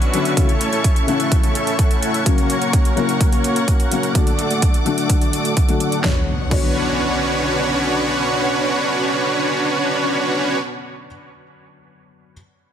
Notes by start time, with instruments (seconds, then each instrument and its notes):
Already playing: felt piano D3 F#3 B3 C#5, supersaw synth C#4 D4 F#4 B4 E5, string section B4 F#5 C#6
0.02 closed hi-hat
0.13 felt piano D3 F#3 B3 C#4, closed hi-hat
0.25 closed hi-hat
0.36 felt piano C#3 E3 A3 F#4, supersaw synth C#4 C#5, string section A4 C#5 E5, kick, closed hi-hat
0.49 closed hi-hat
0.61 closed hi-hat
0.72 supersaw synth A3 C#4 E4 A4 C#5, closed hi-hat
0.84 kick, closed hi-hat
0.96 closed hi-hat
1.07 felt piano C#3 E3 A3 C#4, supersaw synth A3 C#4 E4 A4 F#5, closed hi-hat
1.20 closed hi-hat
1.32 kick, closed hi-hat
1.43 supersaw synth A3 C#4 E4 A4 C#5, closed hi-hat
1.55 closed hi-hat
1.67 closed hi-hat
1.79 supersaw synth A3 C#4 E4 A4, kick, closed hi-hat
1.91 closed hi-hat
2.03 closed hi-hat
2.14 closed hi-hat
2.25 felt piano C#3 F#3 A#3 C#4, supersaw synth A#3 C#4 F#4 C#5, string section A#4 F#5, kick, closed hi-hat
2.38 closed hi-hat
2.50 closed hi-hat
2.61 supersaw synth A#3 C#4 F#4 A#4 C#5, closed hi-hat
2.73 kick, closed hi-hat
2.85 closed hi-hat
2.96 felt piano C#3 F#3 A#3 E4, supersaw synth A#3 C#4 F#4 A#4 F#5, closed hi-hat
3.09 closed hi-hat
3.21 kick, closed hi-hat
3.32 supersaw synth A#3 C#4 F#4 A#4 C#5, closed hi-hat
3.44 closed hi-hat
3.56 closed hi-hat
3.68 supersaw synth A#3 C#4 A#4, kick, closed hi-hat
3.80 closed hi-hat
3.91 felt piano C#3 F#3 A#3 C#4, closed hi-hat
4.03 closed hi-hat
4.14 felt piano D3 F#3 A3 F#4, supersaw synth A3 D4 A4 D5, string section A4 D5 D6, kick, closed hi-hat
4.27 closed hi-hat
4.39 closed hi-hat
4.50 supersaw synth A3 D4 F#4 A4 D5, closed hi-hat
4.62 kick, closed hi-hat
4.74 closed hi-hat
4.85 felt piano D3 F#3 A3 D4, supersaw synth A3 D4 F#4 A4 F#5, closed hi-hat
4.98 closed hi-hat
5.10 kick, closed hi-hat
5.21 supersaw synth A3 D4 F#4 A4 D5, closed hi-hat
5.33 closed hi-hat
5.45 closed hi-hat
5.57 supersaw synth A3 D4 F#4, kick, closed hi-hat
5.68 felt piano D3 F#3 A3 F#4, closed hi-hat
5.80 closed hi-hat
5.92 closed hi-hat
6.02 string section B2 D3 B3 C#5 F#5, felt piano D3 F#3 B3 C#5, supersaw synth C#4 D4 F#4 B4 C#5, kick, snare, impact
6.49 felt piano D3 F#3 B3 C#5, supersaw synth C#4 D4 F#4 B4 C#5, kick, crash